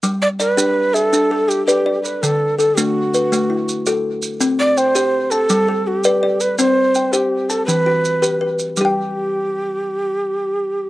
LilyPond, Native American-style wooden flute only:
\new Staff \with { instrumentName = "Native American-style wooden flute" } { \time 12/8 \key g \major \tempo 4. = 110 r8 d''8 b'4. a'4. g'8 g'4 b'8 | a'4 a'8 fis'2. r4. | r8 d''8 c''4. a'4. g'4. b'8 | c''4. g'4 a'8 b'2~ b'8 r8 |
g'1. | }